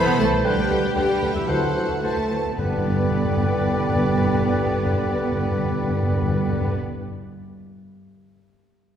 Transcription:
0.00 0.20 B3 loud
0.00 0.45 E4 medium
0.00 0.45 A4 medium
0.00 0.19 B4 medium
0.00 0.46 C5 medium
0.00 0.19 B5 medium
0.00 0.20 B5 medium
0.07 0.12 C2 soft
0.19 0.24 C2 medium
0.19 0.31 E3 medium
0.19 0.45 A3 medium
0.19 0.28 A4 medium
0.19 0.30 C5 medium
0.19 0.26 A5 medium
0.19 0.28 A5 medium
0.19 0.47 A5 medium
0.32 0.37 C2 soft
0.44 0.49 D2 medium
0.44 0.56 D3 medium
0.44 0.95 G3 medium
0.44 0.96 D4 medium
0.44 1.46 G4 medium
0.44 0.95 G4 medium
0.44 0.96 G4 medium
0.44 0.56 B4 medium
0.44 0.96 B4 medium
0.44 0.51 G5 medium
0.44 0.96 G5 medium
0.44 0.97 G5 medium
0.57 0.62 D2 soft
0.69 0.75 D2 medium
0.69 0.82 D3 soft
0.69 0.81 B4 soft
0.69 0.77 G5 soft
0.83 0.88 D2 medium
0.95 1.01 D2 soft
0.95 1.08 D3 medium
0.95 1.34 G3 medium
0.95 1.48 D4 soft
0.95 1.34 G4 medium
0.95 1.48 G4 medium
0.95 1.08 B4 soft
0.95 1.50 B4 soft
0.95 1.01 G5 soft
0.95 1.34 G5 medium
0.95 1.35 G5 medium
1.21 1.27 D2 medium
1.21 1.34 D3 soft
1.21 1.33 B4 soft
1.21 1.28 G5 soft
1.35 1.40 D2 soft
1.35 1.41 E3 medium
1.35 1.48 E4 medium
1.35 1.48 E5 medium
1.35 1.50 E5 medium
1.48 1.54 D2 medium
1.48 2.27 D3 medium
1.48 1.60 E3 soft
1.48 2.02 F#3 medium
1.48 2.03 E4 soft
1.48 2.03 F#4 medium
1.48 2.02 A4 medium
1.48 2.03 A4 soft
1.48 1.60 C5 soft
1.48 1.87 C5 soft
1.48 2.03 F#5 medium
1.48 1.55 A5 soft
1.62 1.67 D2 soft
1.75 1.81 D2 soft
1.75 1.87 E3 soft
1.75 1.87 C5 soft
1.75 1.83 A5 soft
1.89 1.94 D2 soft
2.02 2.08 D2 soft
2.02 2.15 E3 soft
2.02 2.57 A3 medium
2.02 2.31 E4 soft
2.02 2.30 F#4 soft
2.02 2.58 A4 soft
2.02 2.31 A4 soft
2.02 2.16 C5 soft
2.02 2.58 A5 soft
2.02 2.10 A5 soft
2.16 2.22 D2 soft
2.30 2.36 D2 soft
2.30 2.43 E3 soft
2.30 2.43 C5 soft
2.30 2.37 A5 soft
2.45 2.50 D2 soft
2.58 6.75 G1 medium
2.58 2.65 G2 medium
2.58 6.75 D3 soft
2.58 6.75 B3 medium
2.58 6.76 B3 soft
2.58 6.76 D4 soft
2.58 6.76 G4 soft
2.58 6.75 B4 soft
2.58 6.76 B4 soft
2.58 6.75 D5 soft
2.58 6.76 D5 soft
2.58 6.75 G5 medium
2.65 2.71 G2 soft
2.71 2.78 G2 medium
2.78 2.85 G2 medium
2.85 2.91 G2 medium
2.92 2.98 G2 medium
2.98 3.05 G2 medium
3.05 3.11 G2 medium
3.11 3.18 G2 medium
3.18 3.24 G2 soft
3.24 3.31 G2 medium
3.31 3.37 G2 soft
3.37 3.43 G2 medium
3.43 3.50 G2 medium
3.50 3.56 G2 medium
3.56 3.63 G2 soft
3.63 3.69 G2 medium
3.69 3.76 G2 medium
3.76 3.83 G2 medium
3.83 3.89 G2 soft
3.90 3.96 G2 medium
3.96 4.02 G2 medium
4.02 4.09 G2 medium
4.09 4.15 G2 medium
4.15 4.21 G2 medium
4.21 4.28 G2 medium
4.28 4.34 G2 medium
4.34 4.40 G2 medium
4.40 4.47 G2 medium
4.47 4.53 G2 medium
4.54 4.60 G2 medium
4.60 4.66 G2 medium
4.66 4.73 G2 medium
4.73 4.79 G2 soft
4.80 4.86 G2 medium
4.86 4.93 G2 medium
4.93 4.99 G2 medium
4.99 5.06 G2 medium
5.06 5.12 G2 medium
5.12 5.19 G2 medium
5.25 5.32 G2 medium
5.32 5.38 G2 medium
5.39 5.45 G2 medium
5.45 5.52 G2 medium
5.52 5.58 G2 medium
5.58 5.65 G2 medium
5.65 5.71 G2 medium
5.71 5.77 G2 medium
5.77 5.84 G2 medium
5.84 5.90 G2 medium
5.90 5.96 G2 medium
5.96 6.03 G2 medium
6.03 6.09 G2 medium
6.10 6.16 G2 medium
6.16 6.23 G2 medium
6.23 6.29 G2 medium
6.29 6.35 G2 medium
6.35 6.41 G2 soft
6.42 6.48 G2 soft
6.48 6.55 G2 medium
6.55 6.61 G2 medium
6.61 6.67 G2 medium
6.67 6.74 G2 medium

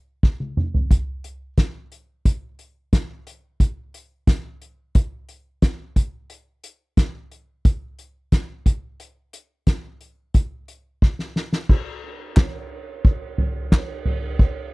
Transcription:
0.23 kick loud
0.23 snare soft
0.40 high tom medium
0.57 mid tom medium
0.74 floor tom medium
0.91 kick medium
0.91 closed hi-hat medium
1.24 closed hi-hat medium
1.58 kick medium
1.58 snare medium
1.58 closed hi-hat medium
1.92 closed hi-hat medium
2.25 kick medium
2.25 closed hi-hat medium
2.59 closed hi-hat medium
2.93 kick medium
2.93 snare loud
2.93 closed hi-hat medium
3.27 closed hi-hat medium
3.60 kick medium
3.60 closed hi-hat medium
3.94 closed hi-hat medium
4.27 kick loud
4.27 snare medium
4.27 closed hi-hat medium
4.62 closed hi-hat soft
4.95 kick loud
4.95 closed hi-hat medium
5.29 closed hi-hat medium
5.62 kick loud
5.62 snare medium
5.62 closed hi-hat medium
5.96 kick medium
5.96 closed hi-hat medium
6.30 closed hi-hat medium
6.64 closed hi-hat medium
6.97 kick medium
6.97 snare medium
6.97 closed hi-hat medium
7.32 closed hi-hat soft
7.65 kick loud
7.65 closed hi-hat medium
7.99 closed hi-hat medium
8.32 kick loud
8.32 snare medium
8.32 closed hi-hat medium
8.66 kick medium
8.66 closed hi-hat medium
9.00 closed hi-hat medium
9.33 closed hi-hat medium
9.67 kick loud
9.67 snare medium
9.67 closed hi-hat medium
10.01 closed hi-hat soft
10.34 kick loud
10.34 closed hi-hat medium
10.68 closed hi-hat medium
11.02 kick medium
11.02 snare soft
11.19 snare medium
11.36 snare medium
11.53 snare medium
11.69 kick medium
11.69 crash loud
12.03 ride medium
12.37 kick loud
12.37 snare loud
12.37 clap loud
12.37 ride medium
12.71 ride soft
13.05 kick loud
13.05 ride medium
13.38 floor tom medium
13.38 ride medium
13.72 kick loud
13.72 snare loud
13.72 clap medium
13.72 ride medium
14.05 floor tom medium
14.05 ride medium
14.39 kick medium
14.39 ride medium

